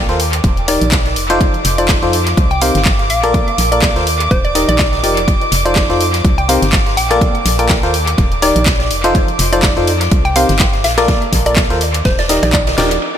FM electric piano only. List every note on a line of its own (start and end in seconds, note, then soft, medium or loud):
0.09 0.18 F4 medium
0.09 0.18 A4 medium
0.09 0.18 A#4 medium
0.09 0.18 C5 medium
0.68 0.85 D#3 medium
0.68 0.85 D#4 medium
0.68 0.85 G4 medium
0.68 0.85 A#4 medium
0.68 0.85 D5 medium
1.30 1.55 F3 medium
1.30 1.55 D#4 medium
1.30 1.55 F4 medium
1.30 1.55 A4 medium
1.30 1.55 C5 loud
1.78 1.99 F3 medium
1.78 1.99 D#4 medium
1.78 1.99 F4 medium
1.78 1.99 A4 medium
1.78 1.99 C5 medium
2.03 2.17 F3 medium
2.03 2.17 D#4 medium
2.03 2.17 F4 medium
2.03 2.17 A4 medium
2.03 2.17 C5 medium
2.62 2.78 C3 medium
2.62 2.78 D#4 medium
2.62 2.78 G4 medium
2.62 2.78 A#4 medium
2.62 2.78 C5 medium
3.24 3.49 A#3 medium
3.24 3.49 F4 medium
3.24 3.49 A4 medium
3.24 3.49 A#4 medium
3.24 3.49 D5 loud
3.72 3.92 A#3 medium
3.72 3.92 F4 medium
3.72 3.92 A4 medium
3.72 3.92 A#4 medium
3.72 3.92 D5 medium
3.96 4.06 F4 medium
3.96 4.06 A4 medium
3.96 4.06 A#4 medium
3.96 4.06 C5 medium
4.55 5.01 D#3 medium
4.55 5.01 D#4 medium
4.55 5.01 G4 medium
4.55 5.01 A#4 medium
4.55 5.01 D#5 medium
5.04 5.20 F3 medium
5.04 5.20 D#4 medium
5.04 5.20 G4 medium
5.04 5.20 A#4 medium
5.04 5.20 D5 medium
5.65 5.86 F3 medium
5.65 5.86 D#4 medium
5.65 5.86 F4 medium
5.65 5.86 A4 medium
5.65 5.86 C5 medium
5.90 6.04 F3 medium
5.90 6.04 D#4 medium
5.90 6.04 F4 medium
5.90 6.04 A4 medium
5.90 6.04 C5 medium
6.49 6.65 C3 medium
6.49 6.65 D#4 medium
6.49 6.65 G4 medium
6.49 6.65 A#4 medium
6.49 6.65 C5 medium
7.11 7.36 A#3 medium
7.11 7.36 F4 medium
7.11 7.36 A4 medium
7.11 7.36 A#4 medium
7.11 7.36 D5 loud
7.59 7.79 A#3 medium
7.59 7.79 F4 medium
7.59 7.79 A4 medium
7.59 7.79 A#4 medium
7.59 7.79 D5 medium
7.83 7.93 F4 medium
7.83 7.93 A4 medium
7.83 7.93 A#4 medium
7.83 7.93 C5 medium
8.42 8.59 D#3 medium
8.42 8.59 D#4 medium
8.42 8.59 G4 medium
8.42 8.59 A#4 medium
8.42 8.59 D5 medium
9.04 9.29 F3 medium
9.04 9.29 D#4 medium
9.04 9.29 F4 medium
9.04 9.29 A4 medium
9.04 9.29 C5 loud
9.53 9.73 F3 medium
9.53 9.73 D#4 medium
9.53 9.73 F4 medium
9.53 9.73 A4 medium
9.53 9.73 C5 medium
9.77 9.91 F3 medium
9.77 9.91 D#4 medium
9.77 9.91 F4 medium
9.77 9.91 A4 medium
9.77 9.91 C5 medium
10.36 10.53 C3 medium
10.36 10.53 D#4 medium
10.36 10.53 G4 medium
10.36 10.53 A#4 medium
10.36 10.53 C5 medium
10.98 11.23 A#3 loud
10.98 11.23 F4 medium
10.98 11.23 A4 medium
10.98 11.23 A#4 medium
10.98 11.23 D5 loud
11.46 11.66 A#3 medium
11.46 11.66 F4 medium
11.46 11.66 A4 medium
11.46 11.66 A#4 medium
11.46 11.66 D5 medium
11.70 11.80 F4 medium
11.70 11.80 A4 medium
11.70 11.80 A#4 medium
11.70 11.80 C5 medium
12.29 12.75 D#3 medium
12.29 12.75 D#4 medium
12.29 12.75 G4 medium
12.29 12.75 A#4 medium
12.29 12.75 D#5 medium
12.78 12.94 F3 medium
12.78 12.94 D#4 medium
12.78 12.94 G4 medium
12.78 12.94 A#4 medium
12.78 12.94 D5 medium